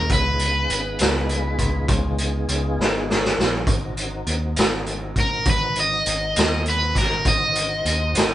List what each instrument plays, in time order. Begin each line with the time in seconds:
Already playing: overdriven electric guitar A#4
0.10 picked electric bass C#2, tonewheel organ B3 D#4 F4 G#4, overdriven electric guitar B4, kick, closed hi-hat
0.39 closed hi-hat
0.70 picked electric bass G#1, closed hi-hat
0.99 picked electric bass C#2, snare, closed hi-hat
1.29 closed hi-hat
1.59 picked electric bass C#2, kick, closed hi-hat
1.88 picked electric bass C#2, kick, closed hi-hat
2.18 closed hi-hat
2.48 picked electric bass C#2, closed hi-hat
2.79 picked electric bass G#1, snare
3.10 snare
3.25 snare
3.39 picked electric bass A#1, snare
3.67 picked electric bass G#1, tonewheel organ C4 D#4 F#4 A#4, kick, closed hi-hat
3.97 closed hi-hat
4.27 picked electric bass D#2, closed hi-hat
4.56 picked electric bass G#1, snare, closed hi-hat
4.86 closed hi-hat
5.16 picked electric bass G#1, kick, closed hi-hat
5.20 overdriven electric guitar A#4
5.45 picked electric bass G#1, kick, closed hi-hat
5.50 overdriven electric guitar B4
5.76 closed hi-hat
5.80 overdriven electric guitar D#5
6.06 picked electric bass G#1, closed hi-hat
6.36 picked electric bass D#2, snare, closed hi-hat
6.66 overdriven electric guitar B4, closed hi-hat
6.95 picked electric bass G#1, overdriven electric guitar A#4, kick, snare, closed hi-hat
7.25 picked electric bass G#1, tonewheel organ D#4 F#4 A#4 C5, overdriven electric guitar D#5, kick, closed hi-hat
7.55 closed hi-hat
7.85 picked electric bass D#2, closed hi-hat
8.14 picked electric bass G#1, snare, closed hi-hat